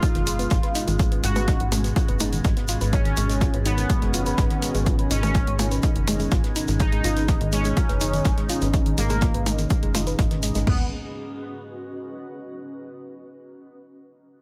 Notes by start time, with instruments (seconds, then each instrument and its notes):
Already playing: synth drone G#2 G#3, analog synth pad B2 G#3, ambient pad C#4 G#4 D#5 B5, analog polysynth F4
0.03 synth pluck D#4, kick, closed hi-hat, shaker
0.15 analog synth bass F#1, synth pluck D#3 D#4, snare, closed hi-hat
0.27 synth pluck G#3 G#4, closed hi-hat, open hi-hat, shaker
0.39 synth pluck B3 B4, closed hi-hat, shaker
0.50 analog synth bass G#1, synth pluck F4 F5, kick, snare, closed hi-hat, shaker
0.63 synth pluck B4 B5, snare, closed hi-hat
0.75 synth pluck D#4 D#5, snare, closed hi-hat, open hi-hat, shaker
0.87 analog synth bass G#1, synth pluck D#3 D#4, closed hi-hat, shaker
0.99 synth pluck G#3 G#4, kick, closed hi-hat, shaker
1.12 synth pluck B3 B4, closed hi-hat
1.23 analog synth bass G#1, synth pluck F4 F5, analog polysynth F#4, snare, closed hi-hat, open hi-hat, shaker
1.36 synth pluck B4 B5, closed hi-hat, percussion blips, shaker
1.48 synth pluck D#4 D#5, kick, snare, closed hi-hat, shaker
1.60 analog synth bass G#1, synth pluck D#3 D#4, closed hi-hat
1.72 synth pluck G#3 G#4, closed hi-hat, open hi-hat, percussion blips, shaker
1.84 synth pluck B3 B4, snare, closed hi-hat, shaker
1.96 synth pluck F4 F5, kick, closed hi-hat, shaker
2.08 analog synth bass F#1, synth pluck B4 B5, closed hi-hat
2.20 synth pluck D#4 D#5, closed hi-hat, open hi-hat, percussion blips, shaker
2.33 synth pluck D#3 D#4, closed hi-hat, shaker
2.44 analog synth bass G#1, synth pluck G#3 G#4, kick, snare, closed hi-hat, shaker
2.57 synth pluck B3 B4, snare, closed hi-hat
2.68 synth pluck F4 F5, snare, closed hi-hat, open hi-hat, shaker
2.81 analog synth bass G#1, synth pluck B4 B5, snare, closed hi-hat, shaker
2.93 analog synth pad D#3 C#4, analog polysynth C#4, synth pluck D#4 D#5, kick, closed hi-hat, shaker
3.05 synth pluck D#3 D#4, snare, closed hi-hat
3.17 analog synth bass G#1, synth pluck G#3 G#4, closed hi-hat, open hi-hat, shaker
3.29 synth pluck G#3 G#4, snare, closed hi-hat, shaker
3.41 synth pluck F4 F5, kick, snare, closed hi-hat, shaker
3.50 analog synth bass G#1, synth pluck B4 B5, ambient pad D#5, closed hi-hat
3.65 analog polysynth B3, synth pluck D#4 D#5, closed hi-hat, open hi-hat, shaker
3.78 synth pluck D#3 D#4, snare, closed hi-hat, shaker
3.90 synth pluck G#3 G#4, kick, closed hi-hat, shaker
4.02 analog synth bass F#1, synth pluck G#3 G#4, snare, closed hi-hat
4.13 synth pluck F4 F5, closed hi-hat, open hi-hat, shaker
4.26 synth pluck B4 B5, closed hi-hat, shaker
4.38 analog synth bass G#1, synth pluck D#4 D#5, kick, snare, closed hi-hat, shaker
4.50 synth pluck D#3 D#4, snare, closed hi-hat
4.62 synth pluck G#3 G#4, closed hi-hat, open hi-hat, shaker
4.75 analog synth bass G#1, synth pluck G#3 G#4, closed hi-hat, shaker
4.86 synth pluck F4 F5, kick, closed hi-hat, shaker
4.99 synth pluck B4 B5, closed hi-hat
5.10 analog synth bass G#1, analog polysynth C#4, synth pluck D#4 D#5, closed hi-hat, open hi-hat, shaker
5.23 synth pluck D#3 D#4, closed hi-hat, percussion blips, shaker
5.34 synth pluck G#3 G#4, kick, snare, closed hi-hat, shaker
5.47 analog synth bass G#1, synth pluck G#3 G#4, closed hi-hat
5.59 synth pluck F4 F5, closed hi-hat, open hi-hat, percussion blips, shaker
5.71 synth pluck B4 B5, snare, closed hi-hat, shaker
5.82 synth pluck D#4 D#5, kick, closed hi-hat, shaker
5.96 analog synth bass F#1, synth pluck D#3 D#4, closed hi-hat
6.07 synth pluck G#3 G#4, closed hi-hat, open hi-hat, percussion blips, shaker
6.20 synth pluck G#3 G#4, closed hi-hat, shaker
6.31 analog synth bass G#1, synth pluck F4 F5, kick, snare, closed hi-hat, shaker
6.44 synth pluck B4 B5, snare, closed hi-hat
6.56 synth pluck D#4 D#5, snare, closed hi-hat, open hi-hat, shaker
6.68 analog synth bass G#1, synth pluck D#3 D#4, snare, closed hi-hat, shaker
6.80 synth pluck G#3 G#4, analog polysynth D#4, analog synth pad D#4, kick, closed hi-hat, shaker
6.92 synth pluck G#3 G#4, snare, closed hi-hat
7.04 analog synth bass G#1, synth pluck F4 F5, closed hi-hat, open hi-hat, shaker
7.17 synth pluck B4 B5, snare, closed hi-hat, shaker
7.28 synth pluck D#4 D#5, kick, snare, closed hi-hat, shaker
7.41 analog synth bass G#1, synth pluck D#3 D#4, closed hi-hat
7.52 synth pluck G#3 G#4, analog polysynth C#4, closed hi-hat, open hi-hat, shaker
7.64 synth pluck G#3 G#4, snare, closed hi-hat, shaker
7.77 synth pluck F4 F5, kick, closed hi-hat, shaker
7.89 analog synth bass F#1, synth pluck B4 B5, snare, closed hi-hat
8.01 synth pluck D#4 D#5, closed hi-hat, open hi-hat, shaker
8.13 synth pluck D#3 D#4, closed hi-hat, shaker
8.25 analog synth bass G#1, synth pluck G#3 G#4, kick, snare, closed hi-hat, shaker
8.37 synth pluck G#3 G#4, snare, closed hi-hat
8.49 synth pluck F4 F5, snare, closed hi-hat, open hi-hat, shaker
8.62 analog synth bass G#1, synth pluck B4 B5, closed hi-hat, shaker
8.74 synth pluck D#4 D#5, kick, closed hi-hat, shaker
8.86 synth pluck D#3 D#4, closed hi-hat
8.98 analog synth bass G#1, synth pluck G#3 G#4, analog polysynth A#3, closed hi-hat, open hi-hat, shaker
9.10 synth pluck G#3 G#4, closed hi-hat, percussion blips, shaker
9.21 synth pluck F4 F5, kick, snare, closed hi-hat, shaker
9.34 analog synth bass G#1, synth pluck B4 B5, closed hi-hat
9.46 synth pluck D#4 D#5, closed hi-hat, open hi-hat, percussion blips, shaker
9.58 synth pluck D#3 D#4, snare, closed hi-hat, shaker
9.70 synth pluck G#3 G#4, kick, closed hi-hat, shaker
9.83 analog synth bass F#1, synth pluck G#3 G#4, closed hi-hat
9.94 synth pluck F4 F5, snare, closed hi-hat, open hi-hat, percussion blips, shaker
10.06 synth pluck B4 B5, snare, closed hi-hat, shaker
10.19 analog synth bass G#1, synth pluck D#4 D#5, kick, snare, closed hi-hat, shaker
10.31 synth pluck D#3 D#4, snare, closed hi-hat
10.43 synth pluck G#3 G#4, snare, closed hi-hat, open hi-hat, shaker
10.55 analog synth bass G#1, synth pluck G#3 G#4, snare, closed hi-hat, shaker
10.67 synth pluck G#3, analog synth pad G#3 A#3 B3, analog polysynth B3, ambient pad C#4, kick, floor tom, crash
10.74 ambient pad F#4
10.82 ambient pad B4
10.89 ambient pad D#5